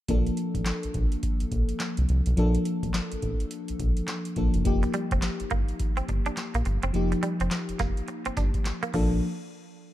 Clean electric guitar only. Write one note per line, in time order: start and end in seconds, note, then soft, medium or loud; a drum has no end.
4.83 muted clean electric guitar stroke soft
4.94 5.06 G3 medium
5.12 5.19 C4 medium
5.51 5.63 A#3 medium
5.97 6.04 C4 medium
6.09 muted clean electric guitar stroke soft
6.26 6.33 D4 medium
6.55 6.62 A#3 medium
6.66 muted clean electric guitar stroke soft
6.83 6.91 C4 medium
7.12 muted clean electric guitar stroke soft
7.23 7.34 G3 medium
7.41 7.48 C4 medium
7.80 7.91 A#3 medium
8.08 muted clean electric guitar stroke soft
8.26 8.33 C4 medium
8.37 8.49 D4 medium
8.83 8.90 A#3 medium
8.94 9.11 F3 medium